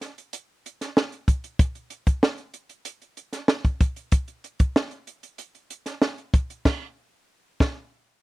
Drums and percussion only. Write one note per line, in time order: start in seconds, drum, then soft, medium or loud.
0.01 snare soft
0.01 closed hi-hat medium
0.18 closed hi-hat medium
0.33 closed hi-hat loud
0.66 closed hi-hat medium
0.81 snare soft
0.81 closed hi-hat medium
0.97 snare medium
1.12 closed hi-hat soft
1.28 kick medium
1.28 closed hi-hat medium
1.44 closed hi-hat medium
1.59 kick loud
1.59 closed hi-hat loud
1.75 closed hi-hat soft
1.90 closed hi-hat medium
2.07 kick medium
2.07 closed hi-hat medium
2.23 snare loud
2.38 closed hi-hat soft
2.54 closed hi-hat medium
2.69 closed hi-hat soft
2.85 closed hi-hat loud
3.02 closed hi-hat soft
3.17 closed hi-hat medium
3.33 snare soft
3.33 closed hi-hat medium
3.48 snare loud
3.65 kick medium
3.65 closed hi-hat soft
3.80 kick loud
3.80 closed hi-hat medium
3.96 closed hi-hat soft
4.12 kick loud
4.12 closed hi-hat loud
4.28 closed hi-hat soft
4.44 closed hi-hat medium
4.59 kick medium
4.59 closed hi-hat medium
4.76 snare loud
4.91 closed hi-hat soft
5.07 closed hi-hat medium
5.23 closed hi-hat medium
5.38 closed hi-hat medium
5.55 closed hi-hat soft
5.70 closed hi-hat medium
5.86 snare soft
5.86 closed hi-hat medium
6.02 snare medium
6.18 closed hi-hat soft
6.34 kick loud
6.34 closed hi-hat medium
6.50 closed hi-hat medium
6.65 kick loud
6.65 snare loud
6.65 crash medium
7.60 kick loud
7.60 snare loud